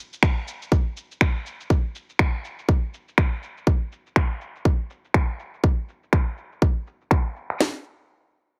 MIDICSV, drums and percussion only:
0, 0, Header, 1, 2, 480
1, 0, Start_track
1, 0, Tempo, 491803
1, 1660, Time_signature, 4, 2, 24, 8
1, 8391, End_track
2, 0, Start_track
2, 0, Title_t, "Drums"
2, 128, Note_on_c, 9, 82, 52
2, 221, Note_on_c, 9, 26, 94
2, 221, Note_on_c, 9, 36, 116
2, 226, Note_off_c, 9, 82, 0
2, 227, Note_on_c, 9, 82, 38
2, 318, Note_off_c, 9, 26, 0
2, 318, Note_off_c, 9, 36, 0
2, 324, Note_off_c, 9, 82, 0
2, 466, Note_on_c, 9, 82, 88
2, 563, Note_off_c, 9, 82, 0
2, 607, Note_on_c, 9, 82, 50
2, 701, Note_on_c, 9, 36, 113
2, 704, Note_off_c, 9, 82, 0
2, 706, Note_on_c, 9, 82, 39
2, 798, Note_off_c, 9, 36, 0
2, 803, Note_off_c, 9, 82, 0
2, 944, Note_on_c, 9, 82, 91
2, 1042, Note_off_c, 9, 82, 0
2, 1087, Note_on_c, 9, 82, 49
2, 1181, Note_on_c, 9, 26, 94
2, 1181, Note_on_c, 9, 36, 108
2, 1185, Note_off_c, 9, 82, 0
2, 1186, Note_on_c, 9, 82, 35
2, 1278, Note_off_c, 9, 26, 0
2, 1278, Note_off_c, 9, 36, 0
2, 1284, Note_off_c, 9, 82, 0
2, 1426, Note_on_c, 9, 82, 89
2, 1523, Note_off_c, 9, 82, 0
2, 1567, Note_on_c, 9, 82, 49
2, 1661, Note_on_c, 9, 36, 106
2, 1665, Note_off_c, 9, 82, 0
2, 1666, Note_on_c, 9, 82, 37
2, 1758, Note_off_c, 9, 36, 0
2, 1764, Note_off_c, 9, 82, 0
2, 1906, Note_on_c, 9, 82, 85
2, 2003, Note_off_c, 9, 82, 0
2, 2047, Note_on_c, 9, 82, 50
2, 2140, Note_on_c, 9, 26, 95
2, 2141, Note_on_c, 9, 36, 109
2, 2144, Note_off_c, 9, 82, 0
2, 2237, Note_off_c, 9, 26, 0
2, 2239, Note_off_c, 9, 36, 0
2, 2387, Note_on_c, 9, 82, 88
2, 2484, Note_off_c, 9, 82, 0
2, 2527, Note_on_c, 9, 82, 48
2, 2621, Note_on_c, 9, 36, 112
2, 2625, Note_off_c, 9, 82, 0
2, 2627, Note_on_c, 9, 82, 36
2, 2719, Note_off_c, 9, 36, 0
2, 2725, Note_off_c, 9, 82, 0
2, 2868, Note_on_c, 9, 82, 89
2, 2965, Note_off_c, 9, 82, 0
2, 3008, Note_on_c, 9, 82, 47
2, 3101, Note_on_c, 9, 26, 95
2, 3102, Note_on_c, 9, 36, 108
2, 3106, Note_off_c, 9, 82, 0
2, 3107, Note_on_c, 9, 82, 35
2, 3199, Note_off_c, 9, 26, 0
2, 3199, Note_off_c, 9, 36, 0
2, 3205, Note_off_c, 9, 82, 0
2, 3347, Note_on_c, 9, 82, 85
2, 3445, Note_off_c, 9, 82, 0
2, 3488, Note_on_c, 9, 82, 48
2, 3581, Note_on_c, 9, 36, 106
2, 3585, Note_off_c, 9, 82, 0
2, 3588, Note_on_c, 9, 82, 37
2, 3679, Note_off_c, 9, 36, 0
2, 3685, Note_off_c, 9, 82, 0
2, 3827, Note_on_c, 9, 82, 85
2, 3925, Note_off_c, 9, 82, 0
2, 3969, Note_on_c, 9, 82, 48
2, 4060, Note_on_c, 9, 26, 97
2, 4061, Note_on_c, 9, 36, 107
2, 4067, Note_off_c, 9, 82, 0
2, 4158, Note_off_c, 9, 26, 0
2, 4159, Note_off_c, 9, 36, 0
2, 4305, Note_on_c, 9, 82, 86
2, 4403, Note_off_c, 9, 82, 0
2, 4448, Note_on_c, 9, 82, 47
2, 4541, Note_on_c, 9, 36, 106
2, 4545, Note_off_c, 9, 82, 0
2, 4638, Note_off_c, 9, 36, 0
2, 4784, Note_on_c, 9, 82, 85
2, 4882, Note_off_c, 9, 82, 0
2, 4926, Note_on_c, 9, 82, 46
2, 5020, Note_on_c, 9, 26, 94
2, 5021, Note_on_c, 9, 36, 103
2, 5024, Note_off_c, 9, 82, 0
2, 5117, Note_off_c, 9, 26, 0
2, 5118, Note_off_c, 9, 36, 0
2, 5266, Note_on_c, 9, 82, 83
2, 5364, Note_off_c, 9, 82, 0
2, 5408, Note_on_c, 9, 82, 47
2, 5501, Note_on_c, 9, 36, 108
2, 5506, Note_off_c, 9, 82, 0
2, 5599, Note_off_c, 9, 36, 0
2, 5746, Note_on_c, 9, 82, 82
2, 5844, Note_off_c, 9, 82, 0
2, 5887, Note_on_c, 9, 82, 48
2, 5980, Note_on_c, 9, 26, 98
2, 5981, Note_on_c, 9, 36, 105
2, 5985, Note_off_c, 9, 82, 0
2, 6077, Note_off_c, 9, 26, 0
2, 6078, Note_off_c, 9, 36, 0
2, 6224, Note_on_c, 9, 82, 84
2, 6322, Note_off_c, 9, 82, 0
2, 6366, Note_on_c, 9, 82, 48
2, 6461, Note_on_c, 9, 36, 110
2, 6464, Note_off_c, 9, 82, 0
2, 6559, Note_off_c, 9, 36, 0
2, 6704, Note_on_c, 9, 82, 85
2, 6802, Note_off_c, 9, 82, 0
2, 6846, Note_on_c, 9, 82, 47
2, 6938, Note_on_c, 9, 26, 94
2, 6941, Note_on_c, 9, 36, 104
2, 6944, Note_off_c, 9, 82, 0
2, 7036, Note_off_c, 9, 26, 0
2, 7039, Note_off_c, 9, 36, 0
2, 7185, Note_on_c, 9, 82, 84
2, 7283, Note_off_c, 9, 82, 0
2, 7321, Note_on_c, 9, 26, 59
2, 7327, Note_on_c, 9, 82, 47
2, 7419, Note_off_c, 9, 26, 0
2, 7422, Note_on_c, 9, 38, 95
2, 7422, Note_on_c, 9, 46, 78
2, 7425, Note_off_c, 9, 82, 0
2, 7520, Note_off_c, 9, 38, 0
2, 7520, Note_off_c, 9, 46, 0
2, 8391, End_track
0, 0, End_of_file